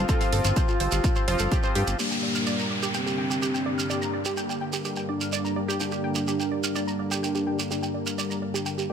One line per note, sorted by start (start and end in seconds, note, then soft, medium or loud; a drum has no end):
0.00 1.95 G4 medium
0.00 1.95 F5 medium
0.00 1.95 A5 medium
0.09 1.25 F3 medium
0.09 1.25 C4 medium
0.09 1.25 F4 medium
0.09 0.17 A4 loud
0.09 kick loud
0.09 closed hi-hat medium
0.09 shekere medium
0.21 0.24 F5 medium
0.21 open hi-hat medium
0.21 shekere soft
0.33 0.40 G1 medium
0.33 0.38 A4 medium
0.33 open hi-hat loud
0.44 0.52 G1 medium
0.44 0.50 F4 loud
0.44 closed hi-hat medium
0.44 shekere medium
0.56 0.62 C5 medium
0.56 kick loud
0.56 closed hi-hat medium
0.56 shekere medium
0.68 0.77 F4 medium
0.68 shekere soft
0.80 0.88 G1 loud
0.80 0.84 C5 medium
0.80 open hi-hat loud
0.92 1.00 G1 medium
0.92 0.98 F4 medium
0.92 closed hi-hat medium
0.92 shekere medium
1.04 1.10 F4 medium
1.04 kick loud
1.04 closed hi-hat medium
1.04 shekere medium
1.16 1.22 C5 medium
1.16 shekere soft
1.28 1.36 F1 loud
1.28 1.96 F3 loud
1.28 1.96 C4 medium
1.28 1.96 F4 loud
1.28 1.36 C5 loud
1.28 open hi-hat loud
1.39 1.47 G1 medium
1.39 1.43 A4 medium
1.39 closed hi-hat medium
1.39 shekere medium
1.52 1.55 G4 loud
1.52 kick loud
1.52 closed hi-hat medium
1.52 shekere medium
1.63 1.69 C5 loud
1.63 shekere soft
1.75 1.83 G2 loud
1.75 1.81 G4 loud
1.75 open hi-hat loud
1.87 1.95 G1 medium
1.87 1.93 G4 medium
1.87 closed hi-hat medium
1.87 shekere medium
1.99 8.93 G2 medium
1.99 8.93 D3 medium
1.99 3.63 G3 medium
1.99 2.96 A#3 loud
1.99 8.93 A#3 medium
1.99 3.63 D4 medium
1.99 2.05 G4 medium
1.99 3.63 G4 medium
1.99 crash medium
1.99 downlifter medium
1.99 shekere medium
2.11 2.17 G5 medium
2.11 shekere soft
2.23 2.29 D5 medium
2.35 2.38 F6 medium
2.35 shekere medium
2.46 2.55 D5 loud
2.46 shekere medium
2.59 2.62 A#5 medium
2.59 shekere soft
2.71 2.76 D5 medium
2.83 2.88 G4 loud
2.83 shekere medium
2.94 4.28 C4 loud
2.94 3.00 G5 medium
2.94 shekere medium
3.06 3.15 G4 medium
3.06 shekere soft
3.18 3.22 G5 medium
3.30 3.36 G4 medium
3.30 shekere medium
3.42 3.48 G4 medium
3.42 shekere medium
3.54 3.60 G5 medium
3.54 shekere soft
3.66 3.87 G3 medium
3.66 3.87 D4 medium
3.66 3.87 G4 medium
3.66 3.72 D5 medium
3.78 3.81 F6 medium
3.78 shekere medium
3.90 5.54 G3 medium
3.90 5.54 D4 medium
3.90 5.54 G4 medium
3.90 3.98 D5 medium
3.90 shekere medium
4.02 4.05 A#5 medium
4.02 shekere soft
4.13 4.19 D5 medium
4.25 4.31 G4 loud
4.25 shekere medium
4.37 4.43 G5 medium
4.37 shekere medium
4.49 4.58 G4 medium
4.49 shekere soft
4.61 4.65 G5 medium
4.73 4.79 G4 medium
4.73 shekere medium
4.85 4.91 G4 medium
4.85 shekere medium
4.96 5.03 G5 medium
4.96 shekere soft
5.09 5.71 D4 loud
5.09 5.14 D5 medium
5.21 5.24 F6 medium
5.21 shekere medium
5.32 5.41 D5 loud
5.32 shekere medium
5.45 5.48 A#5 medium
5.45 shekere soft
5.56 5.77 G3 medium
5.56 5.77 D4 medium
5.56 5.77 G4 medium
5.56 5.62 D5 medium
5.68 5.74 G4 loud
5.68 shekere medium
5.80 7.44 G3 medium
5.80 6.66 D4 loud
5.80 7.44 D4 medium
5.80 7.44 G4 medium
5.80 5.86 G5 medium
5.80 shekere medium
5.92 6.01 G4 medium
5.92 shekere soft
6.04 6.07 G5 medium
6.15 6.22 G4 medium
6.15 shekere medium
6.28 6.34 G4 medium
6.28 shekere medium
6.40 6.45 G5 medium
6.40 shekere soft
6.52 6.57 D5 medium
6.64 6.67 F6 medium
6.64 shekere medium
6.75 8.09 D4 loud
6.75 6.84 D5 loud
6.75 shekere medium
6.87 6.91 A#5 medium
6.87 shekere soft
6.99 7.05 D5 medium
7.11 7.17 G4 loud
7.11 shekere medium
7.23 7.29 G5 medium
7.23 shekere medium
7.35 7.43 G4 medium
7.35 shekere soft
7.47 7.68 G3 medium
7.47 7.68 D4 medium
7.47 7.68 G4 medium
7.47 7.50 G5 medium
7.59 7.64 G4 medium
7.59 shekere medium
7.71 8.87 G3 medium
7.71 8.87 D4 medium
7.71 7.76 G4 medium
7.71 8.87 G4 medium
7.71 shekere medium
7.83 7.88 G5 medium
7.83 shekere soft
7.94 8.00 D5 medium
8.06 8.10 F6 medium
8.06 shekere medium
8.18 8.27 D5 loud
8.18 shekere medium
8.30 8.34 A#5 medium
8.30 shekere soft
8.42 8.48 D5 medium
8.54 8.60 G4 loud
8.54 shekere medium
8.66 8.72 G5 medium
8.66 shekere medium
8.78 8.86 G4 medium
8.78 shekere soft
8.90 8.93 G3 medium
8.90 8.93 A#3 loud
8.90 8.93 D4 medium
8.90 8.93 G4 loud
8.90 8.93 G5 medium